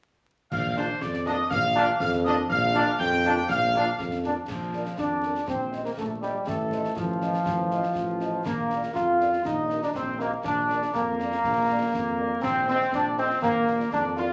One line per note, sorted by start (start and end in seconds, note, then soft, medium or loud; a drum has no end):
0.51 0.93 A#1 medium
0.51 0.75 F5 loud
0.51 0.75 F6 medium
0.51 concert bass drum medium
0.51 crash medium
0.75 0.84 A#2 medium
0.75 0.86 A#3 medium
0.75 0.84 D4 medium
0.75 0.86 D4 medium
0.75 0.86 F4 medium
0.75 0.99 C5 loud
0.75 0.83 C6 medium
0.75 snare medium
1.00 1.42 F2 medium
1.00 1.26 D5 medium
1.00 1.06 D6 medium
1.00 concert bass drum medium
1.00 snare medium
1.14 snare medium
1.26 1.35 A#2 medium
1.26 1.35 A#3 medium
1.26 1.35 D4 medium
1.26 1.35 F4 medium
1.26 1.49 D#5 loud
1.26 1.49 D#6 medium
1.26 snare medium
1.50 1.92 A#1 loud
1.50 1.96 F5 loud
1.50 1.96 F6 loud
1.50 concert bass drum loud
1.50 snare medium
1.64 snare medium
1.74 1.84 A#2 loud
1.74 1.85 A#3 medium
1.74 1.83 D4 loud
1.74 1.85 D4 medium
1.74 1.85 F4 medium
1.74 snare medium
2.00 2.41 F2 loud
2.00 2.11 F5 loud
2.00 2.06 F6 loud
2.00 concert bass drum medium
2.00 snare medium
2.13 snare medium
2.24 2.34 A#2 loud
2.24 2.34 A#3 medium
2.24 2.34 D4 loud
2.24 2.34 D4 medium
2.24 2.34 F4 medium
2.24 2.36 D#5 loud
2.24 2.30 D#6 loud
2.24 snare medium
2.49 2.91 A#1 loud
2.49 2.96 F5 loud
2.49 2.96 F6 loud
2.49 concert bass drum loud
2.49 crash soft
2.74 2.84 A#2 loud
2.74 2.83 A#3 medium
2.74 2.83 D4 loud
2.74 2.84 D4 loud
2.74 2.83 F4 medium
2.74 snare medium
2.99 3.41 F2 loud
2.99 3.45 G5 loud
2.99 3.45 G6 loud
2.99 concert bass drum medium
2.99 snare medium
3.12 snare medium
3.24 3.33 A#2 medium
3.24 3.33 A#3 medium
3.24 3.33 D4 medium
3.24 3.33 D4 loud
3.24 3.33 F4 medium
3.24 snare medium
3.48 3.90 A#1 loud
3.48 4.19 F5 loud
3.48 4.19 F6 loud
3.48 concert bass drum medium
3.48 snare medium
3.62 snare medium
3.74 3.83 A#2 medium
3.74 3.84 A#3 medium
3.74 3.84 D4 medium
3.74 3.83 D4 loud
3.74 3.84 F4 medium
3.74 snare medium
3.99 4.40 F2 loud
3.99 concert bass drum medium
3.99 snare medium
4.11 snare medium
4.24 4.32 A#2 medium
4.24 4.33 A#3 medium
4.24 4.33 D4 medium
4.24 4.33 F4 medium
4.24 snare medium
4.48 4.89 A#1 medium
4.48 4.94 F3 medium
4.48 4.95 F4 medium
4.48 concert bass drum medium
4.48 snare medium
4.48 crash soft
4.73 4.83 F4 soft
4.73 4.83 A#4 soft
4.73 4.83 D5 soft
4.73 snare soft
4.85 snare soft
4.97 5.39 F2 medium
4.97 5.44 D4 medium
4.97 5.44 D5 medium
4.97 concert bass drum medium
4.97 snare medium
5.23 5.32 F4 soft
5.23 5.32 A#4 soft
5.23 5.32 D5 soft
5.23 snare soft
5.35 snare soft
5.47 5.89 A#1 medium
5.47 5.82 C4 medium
5.47 5.83 C4 medium
5.47 5.82 C5 medium
5.47 concert bass drum medium
5.47 snare medium
5.72 5.81 G4 soft
5.72 5.81 C5 soft
5.72 5.81 D#5 soft
5.72 snare soft
5.84 5.90 A#3 medium
5.84 5.97 A#4 medium
5.84 snare medium
5.97 6.38 A#1 medium
5.97 6.20 A3 medium
5.97 6.09 A3 medium
5.97 6.08 A4 medium
5.97 concert bass drum medium
5.97 snare medium
6.21 6.45 G3 medium
6.21 6.33 G4 medium
6.21 6.31 G4 soft
6.21 6.31 C5 soft
6.21 6.31 D#5 soft
6.21 snare soft
6.47 6.88 A1 medium
6.47 6.96 A3 medium
6.47 6.93 A3 medium
6.47 6.93 A4 medium
6.47 concert bass drum medium
6.47 snare medium
6.72 6.81 F4 medium
6.72 6.81 C5 soft
6.72 6.81 D#5 soft
6.72 snare soft
6.84 snare soft
6.96 7.38 A1 medium
6.96 8.41 F3 medium
6.96 8.42 F4 medium
6.96 concert bass drum medium
6.96 snare medium
7.22 7.31 F4 soft
7.22 7.31 C5 medium
7.22 7.31 D#5 soft
7.22 snare soft
7.34 snare soft
7.46 7.83 A1 medium
7.46 concert bass drum medium
7.46 snare medium
7.71 7.80 F4 soft
7.71 7.80 C5 soft
7.71 7.80 D#5 soft
7.71 snare soft
7.83 snare soft
7.95 8.37 A1 medium
7.95 concert bass drum medium
7.95 snare medium
8.20 8.29 F4 soft
8.20 8.29 C5 soft
8.20 8.29 D#5 medium
8.20 snare soft
8.45 8.87 A#1 medium
8.45 8.91 A#3 medium
8.45 8.92 A#3 medium
8.45 8.92 A#4 medium
8.45 concert bass drum medium
8.45 snare medium
8.45 crash soft
8.70 8.79 F4 soft
8.70 8.79 A#4 medium
8.70 8.79 D5 soft
8.70 snare soft
8.83 snare soft
8.94 9.37 F2 medium
8.94 9.41 F4 medium
8.94 9.42 F4 medium
8.94 9.45 F5 medium
8.94 concert bass drum medium
8.94 snare medium
9.20 9.29 F4 medium
9.20 9.29 A#4 medium
9.20 9.29 D5 medium
9.20 snare medium
9.33 snare soft
9.44 9.86 A#1 medium
9.44 9.79 D#4 medium
9.44 9.82 D#4 medium
9.44 9.80 D#5 medium
9.44 concert bass drum medium
9.44 snare medium
9.70 9.79 F#4 medium
9.70 9.79 A#4 medium
9.70 9.79 D#5 medium
9.70 snare soft
9.82 9.87 D4 medium
9.82 9.93 D4 medium
9.82 9.88 D5 medium
9.82 snare medium
9.94 10.36 A#1 medium
9.94 10.05 C4 medium
9.94 10.18 C4 medium
9.94 10.18 C5 medium
9.94 concert bass drum medium
9.94 snare medium
10.19 10.30 A#3 medium
10.19 10.28 F#4 medium
10.19 10.28 A#4 medium
10.19 10.31 A#4 medium
10.19 10.28 D#5 medium
10.19 snare soft
10.44 10.86 A#1 medium
10.44 10.90 D4 medium
10.44 10.91 D4 medium
10.44 10.91 D5 medium
10.44 concert bass drum medium
10.44 snare medium
10.69 10.78 F4 medium
10.69 10.78 A#4 medium
10.69 10.78 D5 medium
10.69 snare medium
10.82 snare medium
10.94 11.36 F2 medium
10.94 12.39 A#3 medium
10.94 12.11 A#3 medium
10.94 12.43 A#4 medium
10.94 concert bass drum medium
10.94 snare medium
11.19 11.28 F4 medium
11.19 11.28 A#4 medium
11.19 11.28 D5 medium
11.19 snare soft
11.32 snare medium
11.44 11.85 A#1 medium
11.44 concert bass drum medium
11.44 snare medium
11.69 11.78 F4 medium
11.69 11.78 A#4 medium
11.69 11.78 D5 medium
11.93 12.35 F2 medium
11.93 concert bass drum medium
11.93 snare medium
12.18 12.27 F4 medium
12.18 12.27 A#4 medium
12.18 12.27 D5 medium
12.42 12.85 A#1 medium
12.42 12.66 C4 loud
12.42 12.66 C4 medium
12.42 12.67 C5 medium
12.42 concert bass drum medium
12.42 snare medium
12.42 crash soft
12.68 12.79 C4 medium
12.68 12.91 C4 loud
12.68 12.77 F4 medium
12.68 12.77 A4 medium
12.68 12.80 C5 medium
12.68 12.77 D#5 medium
12.68 snare soft
12.81 snare medium
12.93 13.35 A#1 medium
12.93 13.16 D4 medium
12.93 13.05 D4 loud
12.93 13.16 D5 medium
12.93 concert bass drum medium
12.93 snare medium
13.18 13.29 C4 medium
13.18 13.41 C4 loud
13.18 13.27 F4 medium
13.18 13.27 A4 medium
13.18 13.30 C5 medium
13.18 13.27 D#5 medium
13.18 snare soft
13.30 snare medium
13.42 13.84 A#1 medium
13.42 13.89 A#3 loud
13.42 13.89 A#3 medium
13.42 13.89 A#4 loud
13.42 concert bass drum medium
13.42 snare medium
13.67 13.77 F4 medium
13.67 13.76 A#4 medium
13.67 13.76 D5 medium
13.67 snare medium
13.80 snare soft
13.92 14.33 F2 medium
13.92 14.03 D4 loud
13.92 14.04 D4 medium
13.92 14.17 D5 medium
13.92 concert bass drum medium
13.92 snare medium
14.17 14.33 F4 loud
14.17 14.26 F4 medium
14.17 14.29 F4 medium
14.17 14.26 A#4 medium
14.17 14.26 D5 medium
14.17 14.28 F5 medium
14.17 snare medium